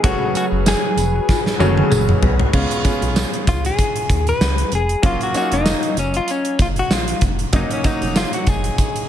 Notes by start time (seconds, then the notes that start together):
0.03 F#1 C#3 F#3 G#3 A3 C#4 F#4 G#4 B4, kick, closed hi-hat
0.35 F#4, closed hi-hat, tambourine
0.52 F#1
0.66 G#4, snare, closed hi-hat, tambourine
0.97 F1, closed hi-hat, tambourine
1.29 F4, kick, snare, tambourine
1.46 snare
1.59 F#1 C#3 F#3 G#3 A3 C#4 F#4, high tom, tambourine
1.77 high tom
1.91 F#1 G#4, mid tom, tambourine
2.09 mid tom
2.22 B1, floor tom
2.39 floor tom
2.53 C#2 G#3 B3 C#4 F4, kick, crash, tambourine
2.71 closed hi-hat
2.84 G#3 B3 C#4 F4, kick, closed hi-hat, tambourine
3.02 B1, closed hi-hat
3.16 snare, tambourine
3.33 closed hi-hat
3.47 C#2 F4, kick, closed hi-hat, tambourine
3.65 G#4, closed hi-hat
3.78 kick, closed hi-hat, tambourine
3.96 closed hi-hat
4.09 D#2, kick, closed hi-hat, tambourine
4.27 B4, closed hi-hat
4.41 C#2, snare, tambourine
4.58 closed hi-hat
4.72 F1 G#4, closed hi-hat, tambourine
4.89 closed hi-hat
5.02 F#1 F#3 A#3 C#4 F4, kick, closed hi-hat
5.21 F#4, closed hi-hat
5.34 F#3 A#3 C#4 D#4 F#4, closed hi-hat, tambourine
5.42 F4
5.52 F1 D#4, closed hi-hat
5.66 snare, tambourine
5.83 closed hi-hat
5.97 F#1 C#4, closed hi-hat, tambourine
6.14 F4, closed hi-hat
6.28 C#4, closed hi-hat, tambourine
6.45 closed hi-hat
6.59 F#1 F4, kick, closed hi-hat, tambourine
6.76 F#4, closed hi-hat
6.90 A#1 F4, snare, tambourine
7.08 closed hi-hat
7.21 F1, kick, closed hi-hat, tambourine
7.39 closed hi-hat
7.52 F#1 F#3 A#3 C#4 D#4, kick, closed hi-hat, tambourine
7.71 C#4, closed hi-hat
7.84 F#3 A#3 C#4 D#4, kick, closed hi-hat, tambourine
8.02 F1, closed hi-hat
8.16 F4, snare, tambourine
8.33 F#4, closed hi-hat
8.47 F#1 G#4, kick, closed hi-hat, tambourine
8.64 closed hi-hat
8.78 kick, closed hi-hat, tambourine
8.96 closed hi-hat